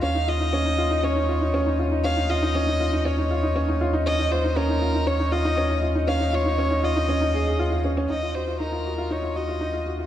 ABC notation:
X:1
M:4/4
L:1/16
Q:1/4=119
K:Db
V:1 name="Violin"
f2 e6 d6 z2 | f2 e6 d6 z2 | e2 c2 B4 d2 e4 z2 | f2 d4 e8 z2 |
e2 c2 B4 d2 e4 z2 |]
V:2 name="Grand piano"
D E F E D E F E D E F E D E F E | D E F E D E F E D E F E D E F E | D E F E D E F E D E F E D E F E | D E F E D E F E D E A A F F D D |
E F G F E F G F E F G F E F G F |]
V:3 name="Sub bass" clef=bass
E,,16- | E,,16- | E,,16- | E,,16 |
E,,16 |]